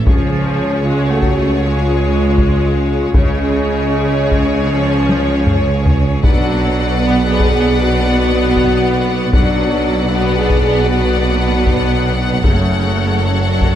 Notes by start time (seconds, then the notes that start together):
0.06 C#2 C#3 F3 C#4 G#4 C#5, taiko
0.83 G#3 F4
1.09 A3 F#4
1.22 taiko
1.36 A3 F#4
1.62 G#3 F4
2.38 taiko
3.14 C#2 C#3 G#3 C#4 G#4 C#5, taiko
4.32 taiko
4.70 F3 C#4
5.09 taiko high
5.47 taiko low-mid
5.86 taiko low
6.23 B1 B2 F#3 D4 B4 D5 F#5, taiko
7.02 B3 F#4
7.26 B3 G#4
7.40 taiko
7.51 B3 G#4
7.79 B3 F#4
8.56 taiko
9.33 B1 B2 F#3 D4 B4 D5 F#5, taiko
10.12 B3 F#4
10.37 B3 G#4
10.50 taiko
10.62 B3 G#4
10.89 B3 F#4
11.66 taiko
12.43 F#1 F#2 C#3 A3 A4 C#5, taiko
13.22 F#3 C#4
13.48 F#3 D4
13.61 taiko